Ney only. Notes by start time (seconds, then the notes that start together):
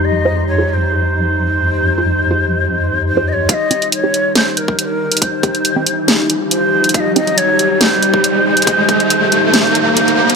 0.04 D#5
0.47 C#5
0.69 C#5
0.73 C5
3.06 C5
3.27 D#5
3.32 C#5
3.49 F5
3.53 D#5
3.93 C#5
4.36 C5
4.57 A#4
4.79 C5
4.84 A#4
5.22 C5
6.51 C5
6.94 F5
6.99 D#5
7.16 D#5
7.38 C#5
7.81 C5
9.97 C5